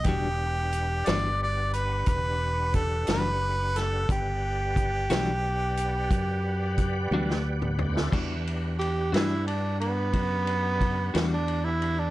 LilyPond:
<<
  \new Staff \with { instrumentName = "Harmonica" } { \time 12/8 \key e \minor \tempo 4. = 59 g'4. d''8 d''8 b'8 b'4 a'8 b'4 a'8 | g'1~ g'4 r4 | r1. | }
  \new Staff \with { instrumentName = "Tonewheel organ" } { \time 12/8 \key e \minor << { <d' g' b' fis''>1. | <g' b' d'' fis''>1. | <d' g' b' fis''>1. | } \\ { r1. | r1. | <a b c' d' e' f' g' a' b' c'' d''>8 r1 r4. | } >> }
  \new Staff \with { instrumentName = "Tenor saxophone" } { \time 12/8 \key e \minor r1. | r1. | r4 g'8 e'8 d'8 b2~ b16 d'8 e'8 d'16 | }
  \new Staff \with { instrumentName = "Clean electric guitar" } { \time 12/8 \key e \minor <e g d' fis'>8 r4 <e g d' fis'>8 r2 r8 <e g d' fis'>8 r4 | r4. <e g d' fis'>8 r2 r8 <e g d' fis'>8 r4 | <e g d' fis'>8 r4 <e g d' fis'>8 r2 r8 <e g d' fis'>8 r4 | }
  \new Staff \with { instrumentName = "Fingered electric bass" } { \clef bass \time 12/8 \key e \minor e,,4. g,,4. e,,4. fis,,4. | g,,4. b,,4. fis,4. d,4. | e,4. g,4. fis,4. e,4. | }
  \new DrumStaff \with { instrumentName = "Drums" } \drummode { \time 12/8 <hh bd>4 hh8 <hh sn>4 hh8 <hh bd>4 <hh bd>8 <hh sn>4 <hh sn>8 | <hh bd>4 <hh bd>8 <hh sn>4 hh8 <hh bd>4 <hh bd>8 tommh16 sn8 toml16 tomfh16 sn16 | <cymc bd>8 cymr8 cymr8 <cymr sn>8 cymr8 cymr8 <bd cymr>8 cymr8 <bd cymr>8 <cymr sn>8 cymr8 cymr8 | }
>>